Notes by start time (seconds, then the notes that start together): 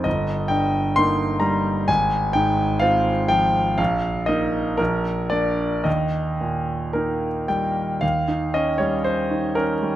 0.04 G1 D#5
0.48 G2 G5
0.96 A#3 D#4 C6
1.40 G3 A#5
1.88 G#1 G#5
2.33 G#2 G5
2.79 C4 F4 F5
3.28 F3 G5
3.78 A#1 F5
4.26 A#3 D#4 D#5
4.77 A#1 A#4
5.30 A#3 D4 D5
5.84 D#2 D#5
6.41 A#2
6.93 A#3 D#4 A#4
7.48 G3 G5
8.01 D#2 F5
8.28 D#4
8.54 C#4 D#5
8.78 G3 C#5
9.04 C5
9.31 D#4
9.55 C#4 A#4
9.82 G3